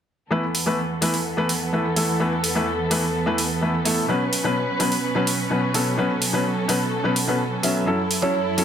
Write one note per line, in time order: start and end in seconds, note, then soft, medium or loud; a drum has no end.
0.30 4.05 E2 medium
0.30 0.42 E3 medium
0.30 4.05 E3 medium
0.30 0.42 A3 medium
0.30 0.43 B3 medium
0.30 4.05 B3 medium
0.30 0.43 E4 medium
0.30 4.05 A4 medium
0.30 0.43 B4 medium
0.55 open hi-hat medium
0.66 0.78 E3 medium
0.66 0.78 A3 medium
0.66 0.78 B3 medium
0.66 0.78 E4 medium
0.66 0.78 B4 medium
1.01 1.13 E3 medium
1.01 1.13 A3 medium
1.01 1.13 B3 medium
1.01 1.14 E4 medium
1.01 1.14 B4 medium
1.01 open hi-hat medium
1.14 open hi-hat medium
1.37 1.49 E3 medium
1.37 1.49 A3 medium
1.37 1.49 B3 medium
1.37 1.49 E4 medium
1.37 1.49 B4 medium
1.49 open hi-hat medium
1.72 1.84 E3 medium
1.72 1.84 A3 medium
1.72 1.84 B3 medium
1.72 1.84 E4 medium
1.72 1.85 B4 medium
1.96 2.15 E3 medium
1.96 2.15 A3 medium
1.96 2.15 B3 medium
1.96 2.15 E4 medium
1.96 2.15 A4 medium
1.96 open hi-hat medium
2.19 2.31 E3 medium
2.19 2.31 A3 medium
2.19 2.32 B3 medium
2.19 2.32 E4 medium
2.19 2.32 B4 medium
2.44 open hi-hat medium
2.55 2.67 E3 medium
2.55 2.67 A3 medium
2.55 2.67 B3 medium
2.55 2.67 E4 medium
2.55 2.67 B4 medium
2.90 3.02 E3 medium
2.90 3.02 A3 medium
2.90 3.02 B3 medium
2.90 3.03 E4 medium
2.90 3.03 B4 medium
2.90 open hi-hat medium
3.26 3.38 E3 medium
3.26 3.38 A3 medium
3.26 3.38 B3 medium
3.26 3.38 E4 medium
3.26 3.38 B4 medium
3.38 open hi-hat loud
3.61 3.73 E3 medium
3.61 3.73 A3 medium
3.61 3.73 B3 medium
3.61 3.73 E4 medium
3.61 3.74 B4 medium
3.85 4.04 A3 medium
3.85 4.04 B3 medium
3.85 4.04 E4 medium
3.85 4.04 A4 medium
3.85 open hi-hat loud
4.08 4.20 B2 medium
4.08 7.83 B2 medium
4.08 4.20 F#3 medium
4.08 8.64 F#3 medium
4.08 4.21 B3 medium
4.08 7.83 C#4 medium
4.08 4.21 C#4 medium
4.08 5.96 B4 medium
4.08 4.21 B4 medium
4.33 open hi-hat loud
4.44 4.56 B2 medium
4.44 4.56 F#3 medium
4.44 4.56 B3 medium
4.44 4.56 C#4 medium
4.44 4.56 B4 medium
4.79 4.91 B2 medium
4.79 4.91 F#3 medium
4.79 4.91 B3 medium
4.79 4.92 C#4 medium
4.79 4.92 B4 loud
4.79 open hi-hat medium
4.92 open hi-hat medium
5.15 5.27 B2 medium
5.15 5.27 F#3 medium
5.15 5.27 B3 medium
5.15 5.27 C#4 medium
5.15 5.27 B4 medium
5.27 open hi-hat loud
5.50 5.62 B2 medium
5.50 5.62 F#3 medium
5.50 5.62 B3 medium
5.50 5.62 C#4 medium
5.50 5.63 B4 medium
5.74 5.92 B2 medium
5.74 5.93 F#3 medium
5.74 5.93 B3 medium
5.74 5.93 C#4 medium
5.74 5.93 A4 medium
5.74 open hi-hat medium
5.97 6.09 B2 medium
5.97 6.09 F#3 medium
5.97 6.10 B3 medium
5.97 6.10 C#4 medium
5.97 7.85 A4 medium
5.97 6.10 B4 medium
6.22 open hi-hat loud
6.33 6.45 B2 medium
6.33 6.45 F#3 medium
6.33 6.45 B3 medium
6.33 6.45 C#4 medium
6.33 6.45 B4 medium
6.68 6.80 B2 medium
6.68 6.80 F#3 medium
6.68 6.80 B3 medium
6.68 6.81 C#4 medium
6.68 6.81 B4 loud
6.68 open hi-hat medium
7.04 7.16 B2 medium
7.04 7.16 F#3 medium
7.04 7.16 B3 medium
7.04 7.16 C#4 medium
7.04 7.16 B4 medium
7.16 open hi-hat loud
7.27 7.39 B2 medium
7.27 7.39 F#3 medium
7.27 7.39 B3 medium
7.27 7.40 C#4 medium
7.27 7.40 B4 medium
7.63 7.84 F#3 medium
7.63 7.84 B3 medium
7.63 7.84 C#4 medium
7.63 7.84 E5 medium
7.63 open hi-hat medium
7.86 8.64 F#2 medium
7.86 7.98 F#3 medium
7.86 7.98 C#4 medium
7.86 8.64 E4 medium
7.86 7.99 E4 medium
7.86 8.64 A4 medium
7.86 7.99 A4 medium
8.11 open hi-hat medium
8.22 8.34 F#3 medium
8.22 8.34 C#4 medium
8.22 8.34 E4 medium
8.22 8.34 A4 medium
8.22 8.42 C#5 medium
8.57 8.64 F#3 medium
8.57 8.64 C#4 medium
8.57 8.64 E4 medium
8.57 8.64 A4 loud
8.57 open hi-hat medium